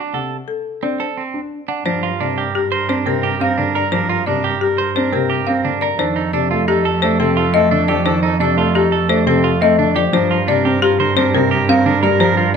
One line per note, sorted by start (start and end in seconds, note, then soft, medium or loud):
0.00 0.19 D4 medium
0.13 0.36 C3 soft
0.13 0.36 A4 soft
0.13 0.36 F#5 soft
0.48 0.70 A4 soft
0.83 1.05 C4 soft
0.83 1.05 D4 medium
0.83 1.05 D5 medium
1.00 1.22 A4 medium
1.00 1.22 C5 soft
1.17 1.40 C4 soft
1.34 1.57 D4 medium
1.68 1.84 D4 soft
1.68 1.91 F#5 soft
1.86 5.89 G2 medium
1.86 2.08 F3 medium
1.86 2.08 D4 medium
1.86 1.98 A#4 soft
1.86 2.08 C5 medium
2.03 2.26 F4 medium
2.03 2.15 A#4 soft
2.20 2.43 C3 medium
2.20 2.43 D4 medium
2.20 2.33 A#4 soft
2.20 2.43 D5 medium
2.37 2.60 G4 medium
2.37 2.50 A#4 soft
2.55 2.78 G4 medium
2.55 2.67 A#4 medium
2.72 2.84 A#4 medium
2.72 2.95 C5 medium
2.89 3.12 C4 medium
2.89 3.12 D4 medium
2.89 3.01 A#4 medium
2.89 3.12 C5 medium
3.06 3.29 C3 medium
3.06 3.29 C4 medium
3.06 3.18 A#4 medium
3.06 3.29 A#4 medium
3.23 3.46 G4 medium
3.23 3.36 A#4 medium
3.40 3.63 C4 medium
3.40 3.53 A#4 medium
3.40 3.64 F5 medium
3.58 3.81 D3 medium
3.58 3.81 D4 medium
3.58 3.70 A#4 medium
3.75 3.87 A#4 medium
3.75 3.98 A#4 medium
3.75 3.98 D5 medium
3.92 4.15 F3 medium
3.92 4.09 D4 medium
3.92 4.05 A#4 medium
3.92 4.15 C5 medium
4.09 4.27 F4 medium
4.09 4.22 A#4 medium
4.26 4.50 C3 medium
4.26 4.50 D4 medium
4.26 4.40 A#4 medium
4.26 4.50 D5 medium
4.44 4.67 G4 medium
4.44 4.57 A#4 medium
4.61 4.84 G4 medium
4.61 4.74 A#4 medium
4.78 4.91 A#4 medium
4.78 5.01 C5 medium
4.96 5.19 C4 medium
4.96 5.19 D4 medium
4.96 5.08 A#4 medium
4.96 5.19 C5 medium
5.12 5.36 C3 medium
5.12 5.36 C4 medium
5.12 5.36 A#4 medium
5.12 5.25 A#4 medium
5.30 5.53 G4 medium
5.30 5.43 A#4 soft
5.47 5.70 C4 medium
5.47 5.71 C4 medium
5.47 5.60 A#4 soft
5.47 5.70 F5 medium
5.65 5.88 D3 medium
5.65 5.88 D4 medium
5.65 5.77 A#4 soft
5.81 6.05 A#4 medium
5.81 6.05 D5 medium
5.99 10.02 F2 medium
5.99 6.22 D#3 medium
5.99 6.22 D4 medium
5.99 6.12 A4 soft
5.99 6.22 C5 medium
6.16 6.33 D#4 medium
6.16 6.29 A4 soft
6.33 6.56 C3 medium
6.33 6.50 D4 medium
6.33 6.46 A4 medium
6.33 6.56 D5 medium
6.50 6.74 A3 medium
6.50 6.67 F4 medium
6.50 6.63 A4 medium
6.68 6.91 D#4 medium
6.68 6.91 G4 medium
6.68 6.80 A4 medium
6.85 6.98 A4 medium
6.85 7.08 A4 medium
7.02 7.26 A3 loud
7.02 7.20 D4 medium
7.02 7.15 A4 medium
7.02 7.25 C5 medium
7.20 7.43 C3 medium
7.20 7.43 C4 medium
7.20 7.32 A4 medium
7.20 7.43 A4 medium
7.37 7.60 F4 medium
7.37 7.50 A4 medium
7.54 7.77 A3 medium
7.54 7.71 C4 medium
7.54 7.67 A4 medium
7.54 7.77 D#5 loud
7.71 7.95 D3 medium
7.71 7.94 D4 medium
7.71 7.84 A4 medium
7.88 8.12 F3 medium
7.88 8.12 G4 medium
7.88 8.01 A4 loud
7.88 8.12 D5 medium
8.05 8.29 D#3 medium
8.05 8.22 D4 medium
8.05 8.19 A4 loud
8.05 8.29 C5 loud
8.23 8.40 D#4 medium
8.23 8.36 A4 medium
8.40 8.63 C3 medium
8.40 8.63 D4 loud
8.40 8.53 A4 medium
8.40 8.64 D5 medium
8.57 8.80 A3 medium
8.57 8.81 F4 medium
8.57 8.70 A4 medium
8.75 8.98 D#4 medium
8.75 8.98 G4 medium
8.75 8.88 A4 medium
8.92 9.15 A4 medium
8.92 9.05 A4 medium
9.09 9.32 A3 loud
9.09 9.27 D4 medium
9.09 9.22 A4 medium
9.09 9.32 C5 loud
9.26 9.50 C3 medium
9.26 9.50 C4 medium
9.26 9.50 A4 medium
9.26 9.40 A4 medium
9.44 9.67 F4 loud
9.44 9.57 A4 medium
9.61 9.84 A3 loud
9.61 9.78 C4 medium
9.61 9.74 A4 medium
9.61 9.84 D#5 loud
9.79 10.01 D3 medium
9.79 10.01 D4 medium
9.79 9.91 A4 soft
9.96 10.11 F3 medium
9.96 10.19 G4 loud
9.96 10.19 D5 medium
10.13 12.56 G2 medium
10.13 10.36 F3 loud
10.13 10.36 D4 medium
10.13 10.25 A#4 soft
10.13 10.36 C5 loud
10.30 10.53 F4 medium
10.30 10.42 A#4 medium
10.48 10.70 C3 medium
10.48 10.70 D4 medium
10.48 10.60 A#4 medium
10.48 10.71 D5 medium
10.65 10.88 C4 medium
10.65 10.82 G4 medium
10.65 10.77 A#4 medium
10.82 10.99 F4 medium
10.82 11.05 G4 medium
10.82 10.94 A#4 medium
10.99 11.22 D3 medium
10.99 11.12 A#4 medium
10.99 11.22 C5 loud
11.16 11.39 C4 loud
11.16 11.39 D4 medium
11.16 11.29 A#4 medium
11.16 11.39 C5 loud
11.34 11.57 C3 medium
11.34 11.57 C4 medium
11.34 11.46 A#4 medium
11.34 11.57 A#4 medium
11.51 11.74 G4 medium
11.51 11.63 A#4 loud
11.68 11.91 C4 loud
11.68 11.91 C4 medium
11.68 11.81 A#4 loud
11.68 11.91 F5 loud
11.86 12.08 D3 medium
11.86 12.09 D4 medium
11.86 11.98 A#4 loud
12.03 12.26 G3 medium
12.03 12.26 A#4 medium
12.03 12.15 A#4 loud
12.03 12.26 D5 medium
12.20 12.43 F3 medium
12.20 12.37 D4 medium
12.20 12.32 A#4 loud
12.20 12.43 C5 loud
12.37 12.54 F4 medium
12.37 12.50 A#4 medium